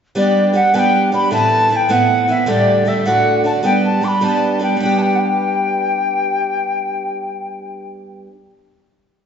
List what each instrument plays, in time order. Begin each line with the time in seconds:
0.15 twelve-string acoustic guitar G3 B3 D4 G4, flute D5
0.53 twelve-string acoustic guitar G3 B3 D4 G4, flute F#5
0.74 twelve-string acoustic guitar G3 B3 D4 G4, flute A5
0.78 flute G5
1.12 twelve-string acoustic guitar G3 B3 D4 G4, flute B5
1.31 twelve-string acoustic guitar A2 E3 B3 C4 E4, flute A5
1.69 twelve-string acoustic guitar E3 B3 C4 E4, flute A5
1.76 flute G5
1.89 twelve-string acoustic guitar A2 E3 B3 C4 E4, flute F#5
2.28 twelve-string acoustic guitar E3 B3 C4 E4, flute E5
2.46 twelve-string acoustic guitar D2 A2 D3 G3 A3 G4, flute D5
2.85 twelve-string acoustic guitar D3 G3 A3 G4, flute E5
3.06 twelve-string acoustic guitar D2 A2 D3 A3 D4 F#4, flute F#5
3.44 twelve-string acoustic guitar D3 A3 D4 F#4, flute A5
3.63 twelve-string acoustic guitar G3 B3 D4 G4, flute G5
3.85 flute A5
4.01 twelve-string acoustic guitar G3 B3 D4 G4, flute D6
4.08 flute B5
4.21 twelve-string acoustic guitar G3 B3 D4 G4, flute A5
4.59 twelve-string acoustic guitar G3 B3 D4 G4, flute G5
4.77 twelve-string acoustic guitar G3 B3
4.81 twelve-string acoustic guitar D4, flute G5
4.86 twelve-string acoustic guitar G4
4.98 flute G5 A5
5.15 flute F#5 G5